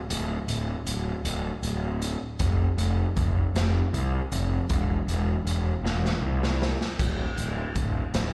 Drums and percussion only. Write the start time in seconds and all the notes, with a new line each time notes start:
0.10 closed hi-hat
0.48 closed hi-hat
0.87 closed hi-hat
1.25 closed hi-hat
1.63 closed hi-hat
2.02 closed hi-hat
2.39 kick, closed hi-hat
2.78 closed hi-hat
3.17 kick, closed hi-hat
3.56 snare, closed hi-hat
3.94 closed hi-hat
4.32 closed hi-hat
4.69 kick, closed hi-hat
5.08 closed hi-hat
5.47 closed hi-hat
5.86 snare
6.05 snare
6.43 snare
6.62 snare
6.81 snare
6.99 kick, closed hi-hat, crash
7.38 closed hi-hat
7.75 kick, closed hi-hat
8.14 snare, closed hi-hat